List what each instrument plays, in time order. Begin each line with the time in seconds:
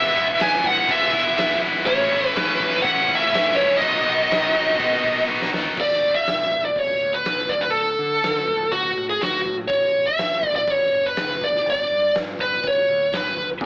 Already playing: distorted electric guitar E3 G#3 B3 E4, lead electric guitar E5
0.14 picked electric bass E1, distorted electric guitar G#3 B3 E4
0.39 picked electric bass E1, distorted electric guitar E3 G#3 B3 E4, lead electric guitar G#5, snare, crash
0.64 picked electric bass E1, lead electric guitar F#5, kick
0.88 picked electric bass E1, distorted electric guitar E3 G#3 B3 E4, lead electric guitar E5, kick, crash
1.13 picked electric bass E1, distorted electric guitar G#3 B3 E4, kick
1.36 picked electric bass E1, distorted electric guitar E3 G#3 B3 E4, snare, crash
1.60 picked electric bass G#1, distorted electric guitar G#3 B3 E4
1.85 picked electric bass A1, distorted electric guitar A2 E3 A3 C#4 E4, lead electric guitar C#5, kick, crash
2.11 picked electric bass A1, distorted electric guitar A3 C#4 E4
2.33 picked electric bass A1, distorted electric guitar E3 A3 C#4 E4, lead electric guitar B4, snare, crash
2.60 picked electric bass A1, kick
2.82 picked electric bass A1, distorted electric guitar A2 E3 A3 C#4 E4, lead electric guitar F#5, kick, crash
3.07 distorted electric guitar A3 C#4 E4, kick
3.15 lead electric guitar E5
3.32 picked electric bass A1, distorted electric guitar E3 A3 C#4 E4, snare, crash
3.56 picked electric bass C#2, distorted electric guitar A3 C#4 E4, lead electric guitar C#5
3.78 distorted electric guitar B2 D#3 F#3, lead electric guitar D#5
3.82 picked electric bass B1, distorted electric guitar B3 D#4, kick, crash
4.05 picked electric bass B1, distorted electric guitar F#3 B3 D#4
4.30 picked electric bass B1, distorted electric guitar D#3 F#3 B3 D#4, snare, crash
4.55 picked electric bass B1, kick
4.78 picked electric bass B1, distorted electric guitar B2 D#3 F#3 B3 D#4, kick, crash
5.03 picked electric bass B1, distorted electric guitar F#3 B3 D#4, kick
5.27 picked electric bass B1, distorted electric guitar D#3 F#3 B3 D#4, kick
5.42 snare
5.53 picked electric bass D#2, distorted electric guitar F#3 B3 D#4, snare
5.65 kick
5.77 picked electric bass E1, lead electric guitar D5, kick, crash
5.91 snare
6.15 lead electric guitar E5
6.27 picked electric bass E1, snare, open hi-hat
6.51 picked electric bass E1, kick
6.65 lead electric guitar D5
6.76 picked electric bass E1, lead electric guitar C#5, kick, open hi-hat
7.01 picked electric bass D2
7.14 lead electric guitar B4
7.25 picked electric bass B1, snare, open hi-hat
7.49 picked electric bass D2, lead electric guitar D5, kick
7.61 lead electric guitar B4
7.70 picked electric bass D2, lead electric guitar A4, open hi-hat
7.99 picked electric bass D3
8.23 picked electric bass D3, snare, open hi-hat
8.48 picked electric bass D2, kick
8.72 picked electric bass D2, lead electric guitar F#4, kick, open hi-hat
8.96 picked electric bass A2
9.10 lead electric guitar G#4
9.22 picked electric bass D2, lead electric guitar F#4, snare, open hi-hat
9.46 picked electric bass A2, kick
9.68 picked electric bass A1, lead electric guitar C#5, kick, open hi-hat
10.07 lead electric guitar E5
10.18 picked electric bass A1, snare, open hi-hat
10.43 picked electric bass A1, kick
10.56 lead electric guitar D5
10.68 picked electric bass A1, lead electric guitar C#5, kick, open hi-hat
10.93 picked electric bass F#1
11.06 lead electric guitar B4
11.16 picked electric bass F#1, snare, open hi-hat
11.41 picked electric bass G1, lead electric guitar D5, kick
11.55 snare
11.65 picked electric bass G1, open hi-hat
11.70 lead electric guitar D5
11.91 picked electric bass G2
12.14 picked electric bass G2, snare, open hi-hat
12.39 picked electric bass G1, lead electric guitar B4, kick
12.64 picked electric bass G1, lead electric guitar C#5, kick, open hi-hat
12.89 picked electric bass D2
13.12 picked electric bass G1, lead electric guitar B4, snare, open hi-hat
13.37 picked electric bass D2, kick
13.61 picked electric bass E1, clean electric guitar E2, kick, open hi-hat